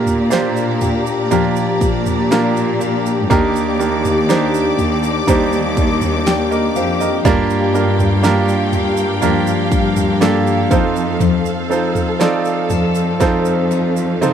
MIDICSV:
0, 0, Header, 1, 6, 480
1, 0, Start_track
1, 0, Key_signature, -2, "major"
1, 0, Tempo, 990099
1, 1603, Time_signature, 4, 2, 24, 8
1, 4951, Tempo, 1001669
1, 6926, End_track
2, 0, Start_track
2, 0, Title_t, "String section"
2, 0, Program_c, 0, 48
2, 0, Note_on_c, 0, 67, 73
2, 0, Note_on_c, 0, 74, 67
2, 0, Note_on_c, 0, 82, 72
2, 1584, Note_off_c, 0, 74, 0
2, 1585, Note_off_c, 0, 82, 0
2, 1599, Note_on_c, 0, 74, 64
2, 1600, Note_on_c, 0, 86, 80
2, 3494, Note_off_c, 0, 74, 0
2, 3495, Note_off_c, 0, 86, 0
2, 3517, Note_on_c, 0, 77, 64
2, 3517, Note_on_c, 0, 79, 77
2, 5171, Note_off_c, 0, 67, 0
2, 5175, Note_off_c, 0, 79, 0
2, 5193, Note_on_c, 0, 69, 80
2, 6926, Note_off_c, 0, 69, 0
2, 6926, Note_off_c, 0, 77, 0
2, 6926, End_track
3, 0, Start_track
3, 0, Title_t, "Grand piano"
3, 0, Program_c, 1, 0
3, 0, Control_c, 1, 64, 127
3, 0, Note_on_c, 1, 46, 69
3, 0, Note_on_c, 1, 58, 67
3, 0, Note_on_c, 1, 62, 63
3, 0, Note_on_c, 1, 65, 62
3, 0, Note_on_c, 1, 67, 56
3, 0, Note_on_c, 1, 70, 78
3, 137, Note_off_c, 1, 58, 0
3, 137, Note_off_c, 1, 62, 0
3, 139, Note_off_c, 1, 65, 0
3, 139, Note_off_c, 1, 67, 0
3, 140, Note_off_c, 1, 70, 0
3, 147, Note_on_c, 1, 58, 89
3, 149, Note_on_c, 1, 62, 72
3, 151, Note_on_c, 1, 65, 73
3, 152, Note_on_c, 1, 67, 71
3, 153, Note_on_c, 1, 72, 94
3, 374, Note_off_c, 1, 46, 0
3, 610, Note_off_c, 1, 58, 0
3, 611, Note_off_c, 1, 62, 0
3, 612, Note_off_c, 1, 65, 0
3, 612, Note_off_c, 1, 67, 0
3, 613, Note_off_c, 1, 72, 0
3, 634, Note_on_c, 1, 58, 85
3, 635, Note_on_c, 1, 62, 77
3, 638, Note_on_c, 1, 65, 69
3, 640, Note_on_c, 1, 67, 81
3, 641, Note_on_c, 1, 70, 83
3, 1095, Note_off_c, 1, 58, 0
3, 1096, Note_off_c, 1, 62, 0
3, 1097, Note_off_c, 1, 65, 0
3, 1098, Note_off_c, 1, 67, 0
3, 1099, Note_off_c, 1, 70, 0
3, 1119, Note_on_c, 1, 58, 81
3, 1120, Note_on_c, 1, 62, 73
3, 1122, Note_on_c, 1, 65, 74
3, 1123, Note_on_c, 1, 67, 72
3, 1124, Note_on_c, 1, 70, 84
3, 1579, Note_off_c, 1, 58, 0
3, 1579, Note_off_c, 1, 62, 0
3, 1580, Note_off_c, 1, 65, 0
3, 1580, Note_off_c, 1, 67, 0
3, 1581, Note_off_c, 1, 70, 0
3, 1599, Note_on_c, 1, 58, 100
3, 1600, Note_on_c, 1, 62, 90
3, 1601, Note_on_c, 1, 51, 74
3, 1602, Note_on_c, 1, 63, 87
3, 1605, Note_on_c, 1, 67, 86
3, 1605, Note_on_c, 1, 70, 109
3, 1610, Control_c, 1, 64, 0
3, 1707, Control_c, 1, 64, 127
3, 1829, Note_off_c, 1, 58, 0
3, 1830, Note_off_c, 1, 62, 0
3, 1830, Note_off_c, 1, 63, 0
3, 1832, Note_off_c, 1, 67, 0
3, 1832, Note_off_c, 1, 70, 0
3, 1838, Note_on_c, 1, 58, 76
3, 1839, Note_on_c, 1, 62, 69
3, 1840, Note_on_c, 1, 63, 66
3, 1843, Note_on_c, 1, 67, 61
3, 1843, Note_on_c, 1, 70, 71
3, 2068, Note_off_c, 1, 58, 0
3, 2068, Note_off_c, 1, 62, 0
3, 2069, Note_off_c, 1, 63, 0
3, 2070, Note_off_c, 1, 67, 0
3, 2070, Note_off_c, 1, 70, 0
3, 2078, Note_on_c, 1, 58, 89
3, 2080, Note_on_c, 1, 62, 86
3, 2082, Note_on_c, 1, 63, 79
3, 2084, Note_on_c, 1, 67, 80
3, 2085, Note_on_c, 1, 72, 92
3, 2301, Note_off_c, 1, 51, 0
3, 2534, Note_off_c, 1, 58, 0
3, 2535, Note_off_c, 1, 62, 0
3, 2535, Note_off_c, 1, 63, 0
3, 2537, Note_off_c, 1, 67, 0
3, 2537, Note_off_c, 1, 72, 0
3, 2556, Note_on_c, 1, 58, 85
3, 2558, Note_on_c, 1, 62, 83
3, 2559, Note_on_c, 1, 63, 82
3, 2563, Note_on_c, 1, 67, 82
3, 2564, Note_on_c, 1, 72, 98
3, 3011, Note_off_c, 1, 58, 0
3, 3012, Note_off_c, 1, 62, 0
3, 3013, Note_off_c, 1, 63, 0
3, 3014, Note_off_c, 1, 67, 0
3, 3015, Note_off_c, 1, 72, 0
3, 3038, Note_on_c, 1, 79, 66
3, 3040, Note_on_c, 1, 74, 53
3, 3151, Note_off_c, 1, 79, 0
3, 3152, Note_off_c, 1, 74, 0
3, 3156, Note_on_c, 1, 75, 66
3, 3159, Note_on_c, 1, 70, 54
3, 3270, Note_off_c, 1, 75, 0
3, 3271, Note_off_c, 1, 70, 0
3, 3277, Note_on_c, 1, 77, 67
3, 3280, Note_on_c, 1, 72, 57
3, 3390, Note_off_c, 1, 77, 0
3, 3392, Note_off_c, 1, 72, 0
3, 3395, Note_on_c, 1, 75, 61
3, 3399, Note_on_c, 1, 70, 54
3, 3514, Note_on_c, 1, 58, 111
3, 3515, Note_off_c, 1, 70, 0
3, 3515, Note_on_c, 1, 62, 107
3, 3518, Note_on_c, 1, 43, 74
3, 3518, Note_on_c, 1, 65, 103
3, 3521, Control_c, 1, 64, 0
3, 3521, Note_on_c, 1, 67, 93
3, 3522, Note_on_c, 1, 70, 115
3, 3605, Control_c, 1, 64, 127
3, 3623, Note_off_c, 1, 75, 0
3, 3742, Note_off_c, 1, 58, 0
3, 3743, Note_off_c, 1, 62, 0
3, 3744, Note_off_c, 1, 65, 0
3, 3746, Note_off_c, 1, 67, 0
3, 3746, Note_off_c, 1, 70, 0
3, 3751, Note_on_c, 1, 58, 75
3, 3752, Note_on_c, 1, 62, 67
3, 3755, Note_on_c, 1, 65, 69
3, 3755, Note_on_c, 1, 67, 66
3, 3758, Note_on_c, 1, 70, 85
3, 3979, Note_off_c, 1, 58, 0
3, 3980, Note_off_c, 1, 62, 0
3, 3981, Note_off_c, 1, 65, 0
3, 3982, Note_off_c, 1, 67, 0
3, 3983, Note_off_c, 1, 70, 0
3, 3989, Note_on_c, 1, 58, 86
3, 3990, Note_on_c, 1, 62, 88
3, 3992, Note_on_c, 1, 65, 81
3, 3995, Note_on_c, 1, 67, 87
3, 3996, Note_on_c, 1, 70, 104
3, 4213, Note_off_c, 1, 43, 0
3, 4445, Note_off_c, 1, 58, 0
3, 4445, Note_off_c, 1, 62, 0
3, 4446, Note_off_c, 1, 65, 0
3, 4448, Note_off_c, 1, 67, 0
3, 4448, Note_off_c, 1, 70, 0
3, 4468, Note_on_c, 1, 58, 85
3, 4471, Note_on_c, 1, 62, 82
3, 4472, Note_on_c, 1, 65, 76
3, 4474, Note_on_c, 1, 67, 83
3, 4475, Note_on_c, 1, 70, 95
3, 4926, Note_off_c, 1, 58, 0
3, 4928, Note_off_c, 1, 62, 0
3, 4929, Note_off_c, 1, 65, 0
3, 4930, Note_off_c, 1, 67, 0
3, 4930, Note_off_c, 1, 70, 0
3, 4949, Note_on_c, 1, 58, 88
3, 4950, Note_on_c, 1, 62, 82
3, 4951, Note_on_c, 1, 65, 82
3, 4953, Note_on_c, 1, 67, 78
3, 4956, Note_on_c, 1, 69, 98
3, 5184, Note_off_c, 1, 65, 0
3, 5185, Note_off_c, 1, 69, 0
3, 5187, Note_on_c, 1, 60, 78
3, 5189, Note_off_c, 1, 58, 0
3, 5190, Note_off_c, 1, 62, 0
3, 5190, Note_on_c, 1, 63, 80
3, 5191, Note_off_c, 1, 67, 0
3, 5191, Note_on_c, 1, 65, 80
3, 5193, Note_on_c, 1, 69, 77
3, 5194, Note_on_c, 1, 72, 96
3, 5198, Control_c, 1, 64, 0
3, 5287, Control_c, 1, 64, 127
3, 5641, Note_off_c, 1, 60, 0
3, 5643, Note_off_c, 1, 63, 0
3, 5643, Note_off_c, 1, 65, 0
3, 5644, Note_off_c, 1, 69, 0
3, 5645, Note_off_c, 1, 72, 0
3, 5662, Note_on_c, 1, 60, 68
3, 5664, Note_on_c, 1, 63, 63
3, 5665, Note_on_c, 1, 65, 65
3, 5667, Note_on_c, 1, 69, 67
3, 5669, Note_on_c, 1, 72, 81
3, 5891, Note_off_c, 1, 60, 0
3, 5892, Note_off_c, 1, 63, 0
3, 5893, Note_off_c, 1, 65, 0
3, 5894, Note_off_c, 1, 69, 0
3, 5895, Note_off_c, 1, 72, 0
3, 5901, Note_on_c, 1, 60, 90
3, 5903, Note_on_c, 1, 63, 76
3, 5905, Note_on_c, 1, 65, 80
3, 5907, Note_on_c, 1, 69, 83
3, 5908, Note_on_c, 1, 74, 92
3, 6360, Note_off_c, 1, 60, 0
3, 6361, Note_off_c, 1, 63, 0
3, 6361, Note_off_c, 1, 65, 0
3, 6363, Note_off_c, 1, 69, 0
3, 6363, Note_off_c, 1, 74, 0
3, 6382, Note_on_c, 1, 60, 89
3, 6384, Note_on_c, 1, 63, 77
3, 6385, Note_on_c, 1, 65, 76
3, 6387, Note_on_c, 1, 69, 79
3, 6389, Note_on_c, 1, 72, 93
3, 6845, Note_off_c, 1, 60, 0
3, 6846, Note_off_c, 1, 63, 0
3, 6846, Note_off_c, 1, 65, 0
3, 6847, Note_off_c, 1, 69, 0
3, 6848, Note_off_c, 1, 72, 0
3, 6868, Note_on_c, 1, 60, 80
3, 6870, Note_on_c, 1, 63, 75
3, 6871, Note_on_c, 1, 65, 69
3, 6874, Note_on_c, 1, 69, 72
3, 6875, Note_on_c, 1, 72, 86
3, 6926, Note_off_c, 1, 60, 0
3, 6926, Note_off_c, 1, 63, 0
3, 6926, Note_off_c, 1, 65, 0
3, 6926, Note_off_c, 1, 69, 0
3, 6926, Note_off_c, 1, 72, 0
3, 6926, End_track
4, 0, Start_track
4, 0, Title_t, "Steel-string acoustic guitar"
4, 0, Program_c, 2, 25
4, 0, Note_on_c, 2, 46, 73
4, 393, Note_on_c, 2, 67, 64
4, 637, Note_on_c, 2, 53, 67
4, 880, Note_on_c, 2, 62, 56
4, 1123, Note_on_c, 2, 58, 56
4, 1124, Note_off_c, 2, 62, 0
4, 1126, Note_on_c, 2, 62, 56
4, 1127, Note_off_c, 2, 67, 0
4, 1129, Note_on_c, 2, 67, 54
4, 1361, Note_off_c, 2, 67, 0
4, 1363, Note_on_c, 2, 67, 64
4, 1602, Note_on_c, 2, 51, 79
4, 1603, Note_off_c, 2, 46, 0
4, 1651, Note_off_c, 2, 53, 0
4, 2082, Note_off_c, 2, 62, 0
4, 2084, Note_on_c, 2, 62, 65
4, 2319, Note_off_c, 2, 67, 0
4, 2321, Note_on_c, 2, 67, 65
4, 2561, Note_on_c, 2, 55, 68
4, 2795, Note_off_c, 2, 62, 0
4, 2797, Note_on_c, 2, 62, 54
4, 2819, Note_off_c, 2, 58, 0
4, 3036, Note_off_c, 2, 62, 0
4, 3036, Note_on_c, 2, 58, 65
4, 3038, Note_on_c, 2, 62, 66
4, 3040, Note_off_c, 2, 67, 0
4, 3042, Note_on_c, 2, 67, 59
4, 3275, Note_off_c, 2, 67, 0
4, 3277, Note_on_c, 2, 67, 68
4, 3515, Note_off_c, 2, 51, 0
4, 3517, Note_on_c, 2, 43, 85
4, 3994, Note_off_c, 2, 62, 0
4, 3996, Note_on_c, 2, 62, 63
4, 4230, Note_off_c, 2, 67, 0
4, 4232, Note_on_c, 2, 67, 72
4, 4258, Note_off_c, 2, 55, 0
4, 4472, Note_on_c, 2, 53, 78
4, 4707, Note_off_c, 2, 62, 0
4, 4712, Note_on_c, 2, 62, 58
4, 4733, Note_off_c, 2, 58, 0
4, 4948, Note_off_c, 2, 62, 0
4, 4951, Note_on_c, 2, 58, 65
4, 4952, Note_off_c, 2, 67, 0
4, 4954, Note_on_c, 2, 62, 59
4, 4957, Note_on_c, 2, 67, 66
4, 5189, Note_off_c, 2, 53, 0
4, 5191, Note_on_c, 2, 53, 81
4, 5238, Note_off_c, 2, 58, 0
4, 5239, Note_off_c, 2, 43, 0
4, 5239, Note_off_c, 2, 62, 0
4, 5241, Note_off_c, 2, 67, 0
4, 5427, Note_off_c, 2, 53, 0
4, 5429, Note_on_c, 2, 53, 83
4, 5906, Note_on_c, 2, 63, 58
4, 6145, Note_on_c, 2, 69, 70
4, 6384, Note_on_c, 2, 60, 65
4, 6620, Note_off_c, 2, 63, 0
4, 6626, Note_on_c, 2, 63, 58
4, 6865, Note_off_c, 2, 60, 0
4, 6868, Note_off_c, 2, 63, 0
4, 6870, Note_off_c, 2, 69, 0
4, 6870, Note_on_c, 2, 60, 62
4, 6873, Note_on_c, 2, 63, 54
4, 6876, Note_on_c, 2, 69, 64
4, 6926, Note_off_c, 2, 53, 0
4, 6926, Note_off_c, 2, 60, 0
4, 6926, Note_off_c, 2, 63, 0
4, 6926, Note_off_c, 2, 69, 0
4, 6926, End_track
5, 0, Start_track
5, 0, Title_t, "Cello section"
5, 0, Program_c, 3, 48
5, 0, Note_on_c, 3, 46, 93
5, 858, Note_off_c, 3, 46, 0
5, 878, Note_on_c, 3, 46, 104
5, 1603, Note_off_c, 3, 46, 0
5, 1604, Note_on_c, 3, 39, 100
5, 2302, Note_off_c, 3, 39, 0
5, 2319, Note_on_c, 3, 39, 96
5, 2542, Note_off_c, 3, 39, 0
5, 2559, Note_on_c, 3, 39, 119
5, 3256, Note_off_c, 3, 39, 0
5, 3276, Note_on_c, 3, 41, 95
5, 3499, Note_off_c, 3, 41, 0
5, 3514, Note_on_c, 3, 43, 111
5, 4691, Note_off_c, 3, 43, 0
5, 4710, Note_on_c, 3, 43, 105
5, 5171, Note_off_c, 3, 43, 0
5, 5189, Note_on_c, 3, 41, 112
5, 5647, Note_off_c, 3, 41, 0
5, 6142, Note_on_c, 3, 41, 93
5, 6367, Note_off_c, 3, 41, 0
5, 6385, Note_on_c, 3, 41, 109
5, 6926, Note_off_c, 3, 41, 0
5, 6926, End_track
6, 0, Start_track
6, 0, Title_t, "Drums"
6, 32, Note_on_c, 9, 43, 62
6, 34, Note_on_c, 9, 82, 43
6, 80, Note_off_c, 9, 43, 0
6, 83, Note_off_c, 9, 82, 0
6, 150, Note_on_c, 9, 82, 68
6, 161, Note_on_c, 9, 38, 110
6, 199, Note_off_c, 9, 82, 0
6, 209, Note_off_c, 9, 38, 0
6, 274, Note_on_c, 9, 82, 45
6, 322, Note_off_c, 9, 82, 0
6, 393, Note_on_c, 9, 82, 41
6, 396, Note_on_c, 9, 43, 66
6, 441, Note_off_c, 9, 82, 0
6, 444, Note_off_c, 9, 43, 0
6, 516, Note_on_c, 9, 82, 47
6, 565, Note_off_c, 9, 82, 0
6, 636, Note_on_c, 9, 82, 62
6, 638, Note_on_c, 9, 43, 63
6, 685, Note_off_c, 9, 82, 0
6, 686, Note_off_c, 9, 43, 0
6, 757, Note_on_c, 9, 82, 52
6, 805, Note_off_c, 9, 82, 0
6, 878, Note_on_c, 9, 36, 72
6, 879, Note_on_c, 9, 82, 50
6, 927, Note_off_c, 9, 36, 0
6, 927, Note_off_c, 9, 82, 0
6, 999, Note_on_c, 9, 82, 51
6, 1000, Note_on_c, 9, 43, 62
6, 1048, Note_off_c, 9, 43, 0
6, 1048, Note_off_c, 9, 82, 0
6, 1123, Note_on_c, 9, 82, 66
6, 1127, Note_on_c, 9, 38, 105
6, 1171, Note_off_c, 9, 82, 0
6, 1176, Note_off_c, 9, 38, 0
6, 1243, Note_on_c, 9, 82, 39
6, 1292, Note_off_c, 9, 82, 0
6, 1362, Note_on_c, 9, 82, 54
6, 1411, Note_off_c, 9, 82, 0
6, 1484, Note_on_c, 9, 82, 48
6, 1533, Note_off_c, 9, 82, 0
6, 1604, Note_on_c, 9, 36, 100
6, 1604, Note_on_c, 9, 43, 112
6, 1604, Note_on_c, 9, 82, 55
6, 1652, Note_off_c, 9, 36, 0
6, 1653, Note_off_c, 9, 43, 0
6, 1653, Note_off_c, 9, 82, 0
6, 1725, Note_on_c, 9, 82, 44
6, 1773, Note_off_c, 9, 82, 0
6, 1845, Note_on_c, 9, 82, 48
6, 1893, Note_off_c, 9, 82, 0
6, 1963, Note_on_c, 9, 82, 46
6, 1964, Note_on_c, 9, 43, 65
6, 2012, Note_off_c, 9, 43, 0
6, 2012, Note_off_c, 9, 82, 0
6, 2082, Note_on_c, 9, 82, 67
6, 2088, Note_on_c, 9, 38, 109
6, 2131, Note_off_c, 9, 82, 0
6, 2137, Note_off_c, 9, 38, 0
6, 2202, Note_on_c, 9, 82, 48
6, 2251, Note_off_c, 9, 82, 0
6, 2321, Note_on_c, 9, 43, 58
6, 2321, Note_on_c, 9, 82, 43
6, 2369, Note_off_c, 9, 82, 0
6, 2370, Note_off_c, 9, 43, 0
6, 2440, Note_on_c, 9, 82, 49
6, 2488, Note_off_c, 9, 82, 0
6, 2558, Note_on_c, 9, 43, 63
6, 2559, Note_on_c, 9, 82, 71
6, 2560, Note_on_c, 9, 36, 91
6, 2606, Note_off_c, 9, 43, 0
6, 2608, Note_off_c, 9, 36, 0
6, 2608, Note_off_c, 9, 82, 0
6, 2679, Note_on_c, 9, 82, 48
6, 2727, Note_off_c, 9, 82, 0
6, 2797, Note_on_c, 9, 82, 49
6, 2798, Note_on_c, 9, 36, 84
6, 2846, Note_off_c, 9, 36, 0
6, 2846, Note_off_c, 9, 82, 0
6, 2916, Note_on_c, 9, 82, 54
6, 2917, Note_on_c, 9, 43, 59
6, 2964, Note_off_c, 9, 82, 0
6, 2965, Note_off_c, 9, 43, 0
6, 3039, Note_on_c, 9, 82, 64
6, 3043, Note_on_c, 9, 38, 113
6, 3088, Note_off_c, 9, 82, 0
6, 3091, Note_off_c, 9, 38, 0
6, 3160, Note_on_c, 9, 82, 43
6, 3209, Note_off_c, 9, 82, 0
6, 3276, Note_on_c, 9, 82, 54
6, 3325, Note_off_c, 9, 82, 0
6, 3397, Note_on_c, 9, 82, 45
6, 3446, Note_off_c, 9, 82, 0
6, 3515, Note_on_c, 9, 36, 110
6, 3515, Note_on_c, 9, 43, 110
6, 3516, Note_on_c, 9, 82, 63
6, 3563, Note_off_c, 9, 36, 0
6, 3563, Note_off_c, 9, 43, 0
6, 3565, Note_off_c, 9, 82, 0
6, 3637, Note_on_c, 9, 82, 45
6, 3685, Note_off_c, 9, 82, 0
6, 3758, Note_on_c, 9, 82, 48
6, 3806, Note_off_c, 9, 82, 0
6, 3874, Note_on_c, 9, 43, 72
6, 3877, Note_on_c, 9, 82, 46
6, 3923, Note_off_c, 9, 43, 0
6, 3926, Note_off_c, 9, 82, 0
6, 3993, Note_on_c, 9, 82, 63
6, 3999, Note_on_c, 9, 38, 104
6, 4042, Note_off_c, 9, 82, 0
6, 4048, Note_off_c, 9, 38, 0
6, 4114, Note_on_c, 9, 82, 46
6, 4162, Note_off_c, 9, 82, 0
6, 4231, Note_on_c, 9, 43, 60
6, 4231, Note_on_c, 9, 82, 46
6, 4279, Note_off_c, 9, 43, 0
6, 4280, Note_off_c, 9, 82, 0
6, 4349, Note_on_c, 9, 82, 56
6, 4397, Note_off_c, 9, 82, 0
6, 4470, Note_on_c, 9, 43, 62
6, 4471, Note_on_c, 9, 82, 70
6, 4519, Note_off_c, 9, 43, 0
6, 4519, Note_off_c, 9, 82, 0
6, 4591, Note_on_c, 9, 82, 53
6, 4639, Note_off_c, 9, 82, 0
6, 4710, Note_on_c, 9, 36, 80
6, 4711, Note_on_c, 9, 82, 52
6, 4759, Note_off_c, 9, 36, 0
6, 4759, Note_off_c, 9, 82, 0
6, 4830, Note_on_c, 9, 82, 55
6, 4831, Note_on_c, 9, 43, 64
6, 4879, Note_off_c, 9, 82, 0
6, 4880, Note_off_c, 9, 43, 0
6, 4953, Note_on_c, 9, 82, 68
6, 4958, Note_on_c, 9, 38, 110
6, 5000, Note_off_c, 9, 82, 0
6, 5006, Note_off_c, 9, 38, 0
6, 5074, Note_on_c, 9, 82, 41
6, 5122, Note_off_c, 9, 82, 0
6, 5190, Note_on_c, 9, 36, 109
6, 5191, Note_on_c, 9, 82, 56
6, 5238, Note_off_c, 9, 36, 0
6, 5239, Note_off_c, 9, 82, 0
6, 5310, Note_on_c, 9, 82, 45
6, 5358, Note_off_c, 9, 82, 0
6, 5426, Note_on_c, 9, 43, 111
6, 5427, Note_on_c, 9, 82, 58
6, 5474, Note_off_c, 9, 43, 0
6, 5475, Note_off_c, 9, 82, 0
6, 5547, Note_on_c, 9, 82, 45
6, 5595, Note_off_c, 9, 82, 0
6, 5671, Note_on_c, 9, 82, 43
6, 5719, Note_off_c, 9, 82, 0
6, 5785, Note_on_c, 9, 43, 69
6, 5788, Note_on_c, 9, 82, 43
6, 5833, Note_off_c, 9, 43, 0
6, 5836, Note_off_c, 9, 82, 0
6, 5906, Note_on_c, 9, 82, 65
6, 5910, Note_on_c, 9, 38, 110
6, 5954, Note_off_c, 9, 82, 0
6, 5958, Note_off_c, 9, 38, 0
6, 6024, Note_on_c, 9, 82, 40
6, 6071, Note_off_c, 9, 82, 0
6, 6142, Note_on_c, 9, 82, 45
6, 6143, Note_on_c, 9, 43, 65
6, 6190, Note_off_c, 9, 82, 0
6, 6191, Note_off_c, 9, 43, 0
6, 6263, Note_on_c, 9, 82, 54
6, 6311, Note_off_c, 9, 82, 0
6, 6385, Note_on_c, 9, 36, 83
6, 6386, Note_on_c, 9, 82, 72
6, 6391, Note_on_c, 9, 38, 59
6, 6433, Note_off_c, 9, 36, 0
6, 6434, Note_off_c, 9, 82, 0
6, 6439, Note_off_c, 9, 38, 0
6, 6503, Note_on_c, 9, 82, 54
6, 6551, Note_off_c, 9, 82, 0
6, 6628, Note_on_c, 9, 82, 55
6, 6676, Note_off_c, 9, 82, 0
6, 6749, Note_on_c, 9, 82, 54
6, 6797, Note_off_c, 9, 82, 0
6, 6871, Note_on_c, 9, 47, 83
6, 6875, Note_on_c, 9, 82, 70
6, 6919, Note_off_c, 9, 47, 0
6, 6923, Note_off_c, 9, 82, 0
6, 6926, End_track
0, 0, End_of_file